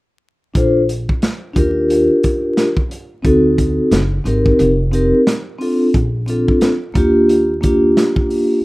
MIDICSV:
0, 0, Header, 1, 4, 480
1, 0, Start_track
1, 0, Tempo, 674157
1, 392, Time_signature, 4, 2, 24, 8
1, 6155, End_track
2, 0, Start_track
2, 0, Title_t, "Vibraphone"
2, 0, Program_c, 0, 11
2, 382, Note_on_c, 0, 62, 59
2, 390, Note_on_c, 0, 65, 58
2, 397, Note_on_c, 0, 69, 54
2, 405, Note_on_c, 0, 72, 65
2, 568, Note_off_c, 0, 62, 0
2, 572, Note_off_c, 0, 65, 0
2, 575, Note_off_c, 0, 69, 0
2, 579, Note_off_c, 0, 72, 0
2, 1094, Note_on_c, 0, 62, 76
2, 1103, Note_on_c, 0, 65, 69
2, 1112, Note_on_c, 0, 67, 70
2, 1122, Note_on_c, 0, 70, 81
2, 1880, Note_off_c, 0, 62, 0
2, 1884, Note_off_c, 0, 65, 0
2, 1889, Note_off_c, 0, 67, 0
2, 1894, Note_off_c, 0, 70, 0
2, 2296, Note_on_c, 0, 60, 77
2, 2304, Note_on_c, 0, 63, 63
2, 2313, Note_on_c, 0, 66, 66
2, 2320, Note_on_c, 0, 69, 86
2, 2784, Note_off_c, 0, 60, 0
2, 2788, Note_off_c, 0, 63, 0
2, 2792, Note_off_c, 0, 66, 0
2, 2796, Note_off_c, 0, 69, 0
2, 3020, Note_on_c, 0, 60, 66
2, 3026, Note_on_c, 0, 63, 62
2, 3036, Note_on_c, 0, 67, 57
2, 3045, Note_on_c, 0, 70, 75
2, 3323, Note_off_c, 0, 60, 0
2, 3326, Note_off_c, 0, 63, 0
2, 3331, Note_off_c, 0, 67, 0
2, 3335, Note_off_c, 0, 70, 0
2, 3498, Note_on_c, 0, 60, 82
2, 3505, Note_on_c, 0, 63, 64
2, 3512, Note_on_c, 0, 67, 71
2, 3522, Note_on_c, 0, 70, 85
2, 3686, Note_off_c, 0, 60, 0
2, 3689, Note_off_c, 0, 63, 0
2, 3693, Note_off_c, 0, 67, 0
2, 3698, Note_off_c, 0, 70, 0
2, 3978, Note_on_c, 0, 60, 70
2, 3986, Note_on_c, 0, 62, 59
2, 3995, Note_on_c, 0, 65, 64
2, 4003, Note_on_c, 0, 69, 73
2, 4166, Note_off_c, 0, 60, 0
2, 4170, Note_off_c, 0, 62, 0
2, 4174, Note_off_c, 0, 65, 0
2, 4178, Note_off_c, 0, 69, 0
2, 4459, Note_on_c, 0, 60, 62
2, 4467, Note_on_c, 0, 62, 56
2, 4475, Note_on_c, 0, 65, 61
2, 4484, Note_on_c, 0, 69, 68
2, 4762, Note_off_c, 0, 60, 0
2, 4766, Note_off_c, 0, 62, 0
2, 4770, Note_off_c, 0, 65, 0
2, 4775, Note_off_c, 0, 69, 0
2, 4940, Note_on_c, 0, 58, 81
2, 4949, Note_on_c, 0, 62, 68
2, 4957, Note_on_c, 0, 65, 70
2, 4965, Note_on_c, 0, 67, 91
2, 5347, Note_off_c, 0, 58, 0
2, 5351, Note_off_c, 0, 62, 0
2, 5355, Note_off_c, 0, 65, 0
2, 5359, Note_off_c, 0, 67, 0
2, 5418, Note_on_c, 0, 58, 70
2, 5427, Note_on_c, 0, 62, 69
2, 5437, Note_on_c, 0, 65, 66
2, 5444, Note_on_c, 0, 67, 77
2, 6106, Note_off_c, 0, 58, 0
2, 6110, Note_off_c, 0, 62, 0
2, 6115, Note_off_c, 0, 65, 0
2, 6118, Note_off_c, 0, 67, 0
2, 6155, End_track
3, 0, Start_track
3, 0, Title_t, "Upright bass"
3, 0, Program_c, 1, 32
3, 392, Note_on_c, 1, 34, 84
3, 757, Note_off_c, 1, 34, 0
3, 1111, Note_on_c, 1, 39, 95
3, 1476, Note_off_c, 1, 39, 0
3, 2310, Note_on_c, 1, 38, 77
3, 2676, Note_off_c, 1, 38, 0
3, 2786, Note_on_c, 1, 30, 91
3, 2971, Note_off_c, 1, 30, 0
3, 3028, Note_on_c, 1, 32, 88
3, 3212, Note_off_c, 1, 32, 0
3, 3268, Note_on_c, 1, 29, 99
3, 3634, Note_off_c, 1, 29, 0
3, 4231, Note_on_c, 1, 34, 84
3, 4596, Note_off_c, 1, 34, 0
3, 4951, Note_on_c, 1, 39, 83
3, 5643, Note_off_c, 1, 39, 0
3, 6155, End_track
4, 0, Start_track
4, 0, Title_t, "Drums"
4, 393, Note_on_c, 9, 36, 93
4, 393, Note_on_c, 9, 42, 69
4, 464, Note_off_c, 9, 36, 0
4, 464, Note_off_c, 9, 42, 0
4, 635, Note_on_c, 9, 42, 66
4, 706, Note_off_c, 9, 42, 0
4, 777, Note_on_c, 9, 36, 82
4, 848, Note_off_c, 9, 36, 0
4, 870, Note_on_c, 9, 42, 85
4, 875, Note_on_c, 9, 38, 88
4, 941, Note_off_c, 9, 42, 0
4, 946, Note_off_c, 9, 38, 0
4, 1111, Note_on_c, 9, 36, 90
4, 1112, Note_on_c, 9, 42, 68
4, 1182, Note_off_c, 9, 36, 0
4, 1183, Note_off_c, 9, 42, 0
4, 1355, Note_on_c, 9, 42, 75
4, 1426, Note_off_c, 9, 42, 0
4, 1591, Note_on_c, 9, 42, 63
4, 1596, Note_on_c, 9, 36, 81
4, 1662, Note_off_c, 9, 42, 0
4, 1667, Note_off_c, 9, 36, 0
4, 1831, Note_on_c, 9, 38, 86
4, 1834, Note_on_c, 9, 42, 79
4, 1903, Note_off_c, 9, 38, 0
4, 1906, Note_off_c, 9, 42, 0
4, 1969, Note_on_c, 9, 36, 84
4, 2041, Note_off_c, 9, 36, 0
4, 2073, Note_on_c, 9, 42, 74
4, 2144, Note_off_c, 9, 42, 0
4, 2311, Note_on_c, 9, 36, 93
4, 2311, Note_on_c, 9, 42, 69
4, 2382, Note_off_c, 9, 36, 0
4, 2382, Note_off_c, 9, 42, 0
4, 2551, Note_on_c, 9, 36, 71
4, 2552, Note_on_c, 9, 42, 68
4, 2623, Note_off_c, 9, 36, 0
4, 2623, Note_off_c, 9, 42, 0
4, 2789, Note_on_c, 9, 42, 91
4, 2794, Note_on_c, 9, 38, 99
4, 2860, Note_off_c, 9, 42, 0
4, 2865, Note_off_c, 9, 38, 0
4, 3033, Note_on_c, 9, 42, 72
4, 3104, Note_off_c, 9, 42, 0
4, 3173, Note_on_c, 9, 36, 86
4, 3244, Note_off_c, 9, 36, 0
4, 3272, Note_on_c, 9, 42, 73
4, 3343, Note_off_c, 9, 42, 0
4, 3511, Note_on_c, 9, 42, 65
4, 3582, Note_off_c, 9, 42, 0
4, 3752, Note_on_c, 9, 38, 95
4, 3755, Note_on_c, 9, 42, 90
4, 3823, Note_off_c, 9, 38, 0
4, 3826, Note_off_c, 9, 42, 0
4, 3994, Note_on_c, 9, 46, 54
4, 4065, Note_off_c, 9, 46, 0
4, 4230, Note_on_c, 9, 42, 70
4, 4231, Note_on_c, 9, 36, 97
4, 4301, Note_off_c, 9, 42, 0
4, 4302, Note_off_c, 9, 36, 0
4, 4469, Note_on_c, 9, 42, 69
4, 4541, Note_off_c, 9, 42, 0
4, 4616, Note_on_c, 9, 36, 82
4, 4687, Note_off_c, 9, 36, 0
4, 4708, Note_on_c, 9, 42, 86
4, 4712, Note_on_c, 9, 38, 91
4, 4779, Note_off_c, 9, 42, 0
4, 4784, Note_off_c, 9, 38, 0
4, 4951, Note_on_c, 9, 36, 95
4, 4951, Note_on_c, 9, 42, 71
4, 5022, Note_off_c, 9, 36, 0
4, 5023, Note_off_c, 9, 42, 0
4, 5193, Note_on_c, 9, 42, 75
4, 5264, Note_off_c, 9, 42, 0
4, 5434, Note_on_c, 9, 42, 64
4, 5438, Note_on_c, 9, 36, 81
4, 5505, Note_off_c, 9, 42, 0
4, 5509, Note_off_c, 9, 36, 0
4, 5675, Note_on_c, 9, 38, 91
4, 5677, Note_on_c, 9, 42, 83
4, 5746, Note_off_c, 9, 38, 0
4, 5749, Note_off_c, 9, 42, 0
4, 5812, Note_on_c, 9, 36, 83
4, 5883, Note_off_c, 9, 36, 0
4, 5912, Note_on_c, 9, 46, 52
4, 5983, Note_off_c, 9, 46, 0
4, 6155, End_track
0, 0, End_of_file